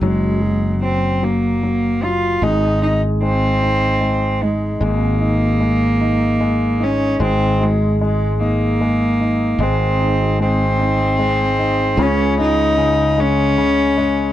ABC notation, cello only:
X:1
M:6/8
L:1/8
Q:3/8=50
K:Abmix
V:1 name="Cello"
A,2 C B,2 F | E E C3 A, | B,4- B, D | C A, A, B,3 |
C2 C4 | D E2 D3 |]